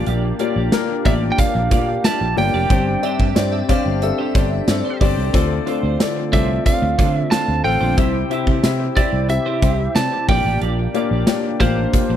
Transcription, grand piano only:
Already playing: A#2 A#3 F4 G4 D5
0.39 A#3 F4 G4 D5
0.72 A#3 F4 G4 A#4
1.05 A#3 F4 G4 D5
1.38 A#3 F4 G4 D5
1.70 A#3 F4 G4 D5
2.04 A#3 F4 G4 E5
2.37 A#3 F4 G4 D5
2.70 G2 C4 D4 G4 D5
3.02 C4 D4 G4 D5
3.35 C4 D4 G4 D5
3.69 C4 D4 G4 D5
4.02 C4 D4 G4 A4
4.35 C4 D4 G4 D5
4.68 C4 D4 G4 A4
5.01 C4 D4 G4 D5
5.33 D3 C4 F4 A4 D5
5.66 C4 F4 A4 D5
5.99 C4 F4 A4 D5
6.32 C4 F4 A4 D5
6.65 C4 F4 A4 D5
6.98 C4 F4 A4 D5
7.31 C4 F4 A4 F5
7.64 C4 F4 A4 F5
7.97 C3 C4 E4 G4 E5
8.30 C4 E4 G4 E5
8.63 C4 E4 G4 E5
8.96 C4 E4 G4 E5
9.29 C4 E4 G4 E5
9.62 C4 E4 G4 E5
9.95 C4 E4 G4 D5
10.28 A#2 A#3 F4 G4 D5
10.94 A#3 F4 G4 D5
11.27 A#3 F4 G4 D5
11.60 A#3 F4 G4 F5
11.93 A#3 F4 G4 F5

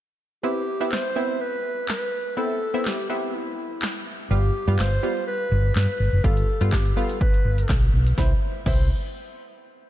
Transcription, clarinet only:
0.44 G4
0.92 C5
1.41 B4
1.89 B4
2.38 A4
2.86 G4
3.10 G4
3.34 E4
4.31 G4
4.79 C5
5.27 B4
5.76 B4
6.24 A4
6.72 G4
6.97 A4
7.21 B4
8.18 C5
8.66 C5

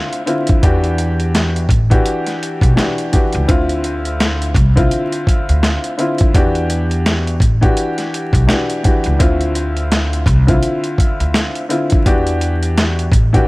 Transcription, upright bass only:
0.63 E2
1.69 A1
2.62 B1
3.34 C#2
3.49 D2
4.55 C2
5.49 D2
6.35 E2
7.41 A1
8.33 B1
9.06 C#2
9.20 D2
10.26 C2
11.20 D2
12.06 E2
13.12 A1

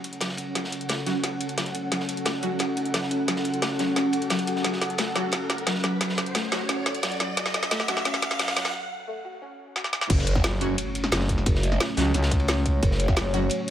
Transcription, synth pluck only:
0.21 F#3
0.38 C#4
0.55 F#3
0.89 A3
1.07 F#4
1.24 C#4
1.58 F#3
1.75 C#4
1.92 F#3
2.26 A3
2.43 F#4
2.60 C#4
2.94 F#3
3.11 C#4
3.28 F#3
3.62 A3
3.79 F#4
3.96 C#4
4.30 F#3
4.47 F#4
4.64 F#3
4.99 A3
5.16 F#4
5.33 C#4
5.67 F#3
5.84 F#3
6.01 F#3
6.35 A3
6.52 F#4
6.69 C#4
7.03 F#3
7.20 F#3
7.37 F#3
7.71 A3
7.88 F#4
8.05 C#4
8.39 F#3
8.56 F#3
8.74 F#3
9.08 A3
9.25 F#4
9.42 C#4
9.76 F#4
9.93 F#4

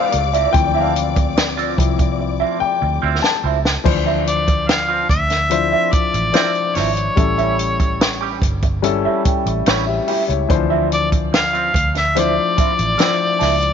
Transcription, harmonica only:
4.28 D5
4.68 F5
5.10 E5
5.93 D5
6.75 C#5
10.94 D5
11.35 F5
11.98 E5
12.18 D5

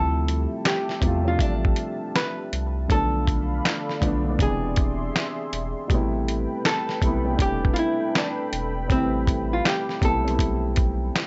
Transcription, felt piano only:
Already playing: C3 F3 G3 A3 E4
1.01 C3 F3 G3
1.05 A3 F4
1.25 C3 F3 G3
1.29 A3 D4
2.88 D3 F3 A3
2.93 B3 D4
4.01 D3 F3 A3
4.05 B3 D4
4.24 D3 F3 A3
4.29 B3 D4
4.38 C3 E3 G#3
4.43 B3 D4
5.88 B2 G3 A3
5.93 C3 B3 E4
7.01 C3 G3 A3
7.05 B3 E4
7.25 C3 G3 A3
7.29 B3 C#4
7.37 D4
8.88 C3 G3 A3
8.93 E4 B4
10.01 C3 G3 A3
10.06 B3 E4
10.25 G3 A3 C4
10.29 B3 E4

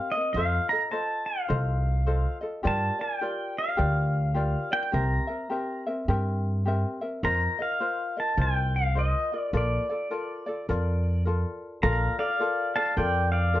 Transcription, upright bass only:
0.34 F2
1.50 C2
2.65 G2
3.79 D2
4.94 C2
6.08 G2
7.23 F2
8.37 C2
9.53 A#1
10.69 F2
11.83 A#1
12.97 F2

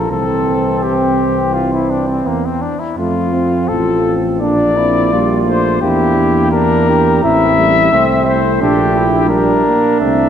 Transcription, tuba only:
0.10 C2
2.26 E2
2.98 F2
3.69 A1
4.41 A#1
5.81 E2
7.23 A1
7.92 C2
8.61 A#1
10.01 C2

